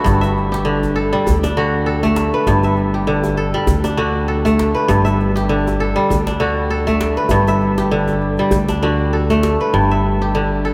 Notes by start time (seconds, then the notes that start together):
Already playing: D3 A3 E4 F#4 A4 B4 C#5
0.04 G1 G2, djembe slap, djembe bass
0.21 E5, djembe tone
0.37 djembe slap
0.52 G4, djembe slap
0.65 D3
0.83 djembe tone
0.96 A4
1.13 G3, djembe slap
1.26 D2, djembe bass
1.43 D4, djembe slap, djembe tone
1.57 D3 F#4, djembe slap
1.86 A4
2.03 A3, djembe tone
2.16 djembe slap
2.34 B4, djembe slap
2.47 G1 G2, djembe slap, djembe bass
2.63 E5, djembe tone
2.77 djembe slap
2.94 G4
3.07 D3
3.23 djembe tone
3.37 A4
3.54 G3, djembe slap
3.67 D2, djembe bass
3.84 D4, djembe slap, djembe tone
3.97 D3 F#4, djembe slap
4.28 A4
4.45 A3, djembe tone
4.59 djembe slap
4.75 B4, djembe slap
4.88 G1 G2, djembe slap, djembe bass
5.05 E5, djembe tone
5.20 djembe slap
5.36 G4, djembe slap
5.49 D3
5.67 djembe tone
5.80 A4
5.96 G3, djembe slap
6.10 D2, djembe bass
6.27 D4, djembe slap, djembe tone
6.40 D3 F#4, djembe slap
6.70 A4
6.87 A3, djembe tone
7.01 djembe slap
7.17 B4, djembe slap
7.29 G1 G2, djembe slap, djembe bass
7.47 E5, djembe tone
7.61 djembe slap
7.78 G4, djembe slap
7.91 D3
8.08 djembe tone
8.22 djembe slap
8.38 G3, djembe slap
8.51 D2, djembe bass
8.69 D4, djembe slap, djembe tone
8.83 D3 F#4
9.13 A4
9.30 A3, djembe slap, djembe tone
9.43 djembe slap
9.60 B4, djembe slap
9.73 G1 G2
9.91 E5
10.22 G4
10.35 D3
10.65 A4